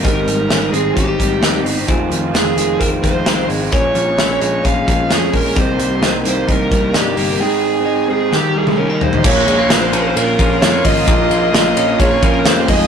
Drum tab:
CC |----------------|----------------|----------------|----------------|
RD |----------------|----------------|----------------|----------------|
HH |x-x-x-x-x-x-x-o-|x-x-x-x-x-x-x-o-|x-x-x-x-x-x-x-o-|x-x-x-x-x-x-x-o-|
SD |----o-------o---|----o-------o---|----o-------o---|----o-------o---|
T1 |----------------|----------------|----------------|----------------|
FT |----------------|----------------|----------------|----------------|
BD |o-------o-o-----|o-------o-o-----|o-------o-o---o-|o-------o-o-----|

CC |----------------|x---------------|----------------|
RD |----------------|--x-x-x-x-x-x-x-|x-x-x-x-x-x-x-x-|
HH |----------------|--------------o-|p-------------o-|
SD |--------o-------|----o-------o---|----o-------o---|
T1 |-----------o----|----------------|----------------|
FT |--------------oo|----------------|----------------|
BD |----------------|o---------o---o-|o-------o-o---o-|